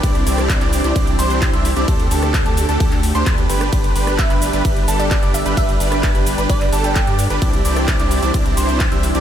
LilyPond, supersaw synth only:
\new Staff \with { instrumentName = "Supersaw synth" } { \time 4/4 \key g \major \tempo 4 = 130 <c' d' e' g' d''>8 <c' d' e' g' d''>8. <c' d' e' g' d''>8 <c' d' e' g' d''>16 <c' d' e' g' d''>8 <c' d' e' g' c''>8. <c' d' e' g' e''>16 r16 <c' d' e' g' d''>16 | <d' g' a'>8 <d' g' a'>8. <d' g' a'>8 <d' g' a'>16 <d' g' a'>8 r16 <d' g' c''>16 <d' g' b'>8 <d' g' b'>8 | <d' g' b'>8 <d' g' b'>8. <d' g' b'>8 <d' g' b'>16 <d' g' b'>8 <d' g' a'>8. <d' g' d''>16 r16 <d' g' b'>16 | <d' g' b'>8 <d' g' b'>8. <d' g' b'>8 <d' g' b'>16 <d' g' b'>8 <d' g' a'>8. <d' g' d''>16 r16 <d' g' b'>16 |
<c' d' e' g' d''>8 <c' d' e' g' d''>8. <c' d' e' g' d''>8 <c' d' e' g' d''>16 <c' d' e' g' d''>8 <c' d' e' g' c''>8. <c' d' e' g' e''>16 r16 <c' d' e' g' d''>16 | }